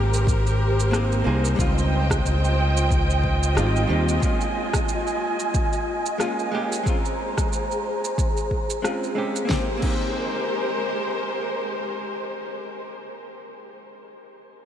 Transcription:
0.00 1.22 G#1 medium
0.00 0.88 A#3 medium
0.00 0.89 C4 medium
0.00 0.90 D#4 medium
0.00 0.91 G4 medium
0.00 1.56 G4 medium
0.00 1.56 A#4 medium
0.00 4.19 C5 medium
0.14 shaker medium
0.27 kick loud
0.27 shaker medium
0.47 shaker soft
0.80 shaker medium
0.91 1.21 A#3 medium
0.91 1.22 C4 medium
0.91 1.22 D#4 medium
0.91 1.23 G4 medium
0.91 cross-stick medium
0.91 shaker medium
1.12 shaker soft
1.24 1.54 C2 medium
1.24 1.54 A#3 medium
1.24 1.55 C4 medium
1.24 1.56 D#4 medium
1.24 1.56 G#4 medium
1.45 shaker medium
1.56 2.21 C#2 medium
1.56 3.52 G3 medium
1.56 3.53 C4 medium
1.56 3.53 D#4 medium
1.56 6.82 F4 medium
1.56 6.82 D#5 medium
1.56 4.20 G5 medium
1.56 kick loud
1.56 shaker medium
1.61 3.54 F4 medium
1.78 shaker soft
2.10 kick loud
2.10 cross-stick medium
2.10 shaker medium
2.25 3.58 C#2 medium
2.25 shaker soft
2.45 shaker soft
2.77 shaker medium
2.91 kick loud
2.91 shaker medium
3.10 shaker soft
3.24 kick medium
3.43 shaker medium
3.55 3.85 G#1 medium
3.55 3.85 G3 medium
3.55 3.86 C4 medium
3.55 3.86 D#4 medium
3.55 3.87 F4 medium
3.55 cross-stick medium
3.55 shaker medium
3.76 shaker soft
3.87 4.18 D#2 medium
3.87 4.18 G3 medium
3.87 4.19 C4 medium
3.87 4.19 D#4 medium
3.87 4.19 G4 medium
4.09 shaker medium
4.20 6.16 G#3 medium
4.20 6.16 A#3 medium
4.20 6.17 C#4 medium
4.20 6.83 G#5 medium
4.20 kick loud
4.20 shaker medium
4.25 6.18 F4 medium
4.41 shaker soft
4.74 kick medium
4.74 cross-stick medium
4.74 shaker medium
4.88 shaker medium
5.07 shaker soft
5.40 shaker medium
5.54 kick loud
5.54 shaker medium
5.73 shaker soft
6.06 shaker medium
6.18 6.49 G#3 medium
6.18 6.49 A#3 medium
6.18 6.50 C#4 medium
6.18 6.50 F4 medium
6.18 cross-stick medium
6.18 shaker medium
6.39 shaker soft
6.51 6.82 G#3 medium
6.51 6.83 A#3 medium
6.51 6.83 C#4 medium
6.51 6.83 G4 medium
6.72 shaker medium
6.83 8.79 G#3 medium
6.83 8.80 C4 medium
6.83 8.81 C#4 medium
6.83 9.47 G#4 medium
6.83 9.47 C5 medium
6.83 9.47 A#5 medium
6.83 kick loud
6.83 shaker soft
6.89 8.82 F4 medium
7.05 shaker soft
7.38 kick medium
7.38 cross-stick medium
7.38 shaker medium
7.53 shaker soft
7.71 shaker soft
8.04 shaker medium
8.18 kick loud
8.18 shaker medium
8.37 shaker soft
8.51 kick medium
8.70 shaker medium
8.82 9.13 G#3 medium
8.82 9.13 C4 medium
8.82 9.14 C#4 medium
8.82 9.14 F4 medium
8.82 cross-stick medium
8.82 shaker medium
9.03 shaker soft
9.15 9.45 G#3 medium
9.15 9.46 C4 medium
9.15 9.47 C#4 medium
9.15 9.47 G4 medium
9.36 shaker medium
9.45 9.67 A#3 medium
9.45 9.69 C4 medium
9.49 12.90 G#3 medium
9.49 9.70 D#4 medium
9.49 12.90 G4 medium
9.49 9.71 G4 medium
9.49 12.90 A#4 medium
9.49 12.90 C5 medium
9.49 kick medium
9.49 snare medium
9.77 13.57 A#3 medium
9.77 13.58 C4 medium
9.82 13.60 D#4 medium
9.82 13.61 G4 medium
9.82 kick medium
9.82 crash medium

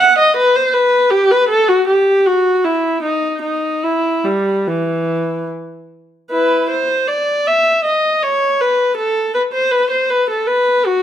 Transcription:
0.00 0.18 F#5 medium
0.19 0.37 D#5 medium
0.37 0.55 B4 medium
0.56 0.75 C5 medium
0.73 1.12 B4 medium
1.11 1.30 G4 medium
1.31 1.50 B4 medium
1.49 1.68 A4 medium
1.68 1.87 F#4 medium
1.88 2.25 G4 medium
2.26 2.64 F#4 medium
2.64 3.03 E4 medium
3.03 3.41 D#4 medium
3.42 3.82 D#4 medium
3.84 4.25 E4 medium
4.24 4.66 G3 medium
4.66 5.48 E3 soft
6.31 6.67 E4 soft
6.31 6.68 B4 medium
6.70 7.08 C5 medium
7.08 7.46 D5 medium
7.47 7.84 E5 medium
7.85 8.22 D#5 medium
8.23 8.60 C#5 medium
8.61 8.98 B4 medium
8.97 9.34 A4 medium
9.34 9.42 B4 medium
9.53 9.71 C5 medium
9.71 9.90 B4 medium
9.91 10.09 C5 medium
10.10 10.28 B4 medium
10.30 10.48 A4 medium
10.47 10.85 B4 medium
10.86 11.03 F#4 medium

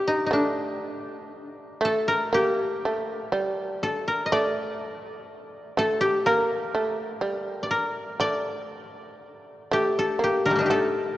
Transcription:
0.00 0.30 G3 medium
0.00 1.89 G4 medium
0.00 0.15 A4 medium
0.08 0.26 D#4 medium
0.26 0.39 D#4 soft
0.31 1.32 A3 medium
0.31 2.76 D4 medium
1.81 2.32 A3 medium
1.85 2.14 A4 medium
2.08 3.89 A#4 medium
2.33 2.83 A#3 medium
2.33 4.38 G4 medium
2.85 3.32 A3 medium
3.32 4.31 G3 medium
3.83 4.14 A4 medium
4.08 5.84 A#4 medium
4.26 4.38 D#5 medium
4.32 5.30 A3 medium
4.32 5.92 D5 loud
5.77 6.25 A3 medium
5.77 6.32 A4 medium
6.01 8.05 G4 medium
6.26 6.74 A#3 medium
6.26 7.71 A#4 medium
6.74 7.21 A3 medium
7.21 8.19 G3 medium
7.63 8.20 D5 medium
7.71 9.55 A#4 medium
8.20 9.20 A3 medium
8.20 9.81 D5 loud
9.72 10.19 A3 medium
9.72 10.24 G4 medium
9.99 10.52 A4 medium
10.19 10.70 A#3 medium
10.24 10.66 G4 medium
10.46 10.67 D3 soft
10.46 10.65 D#3 soft
10.46 10.77 A#4 medium
10.50 10.77 G3 soft
10.50 11.17 A3 soft
10.56 10.77 A#3 medium
10.56 11.17 D4 medium
10.61 11.17 D#4 medium
10.66 11.17 G4 medium
10.70 11.17 A3 medium
10.70 11.17 A4 medium

